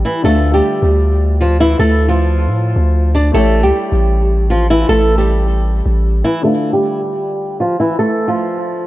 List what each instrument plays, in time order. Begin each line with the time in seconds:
Already playing: grand piano A3 E4 G4 C#5
0.05 nylon-string guitar E3 E4
0.22 808-style bass D2, grand piano D3 D4 E5, nylon-string guitar A3 A4
0.27 grand piano F4
0.54 nylon-string guitar G3 G4
0.82 808-style bass D2
1.41 nylon-string guitar F3 F4
1.60 nylon-string guitar E3 E4
1.79 808-style bass D2, nylon-string guitar A3 A4
2.08 nylon-string guitar F3 F4
2.47 808-style bass A2
2.76 808-style bass D2
3.15 nylon-string guitar D4 D5
3.32 808-style bass A1, grand piano A3 E4 G4, nylon-string guitar A3 A4
3.36 grand piano C#5
3.63 808-style bass C#2, nylon-string guitar G3 G4
3.92 808-style bass A1
4.50 nylon-string guitar F3 F4
4.70 nylon-string guitar E3 E4
4.89 808-style bass A1, nylon-string guitar A3 A4
5.18 nylon-string guitar G3 G4
5.86 808-style bass A1
6.24 nylon-string guitar E3 E4
6.42 grand piano D3 D4 E5, nylon-string guitar A3 A4
6.46 grand piano F4
6.73 nylon-string guitar G3 G4
7.60 nylon-string guitar F3 F4
7.80 nylon-string guitar E3 E4
7.99 nylon-string guitar A3 A4
8.28 nylon-string guitar F3 F4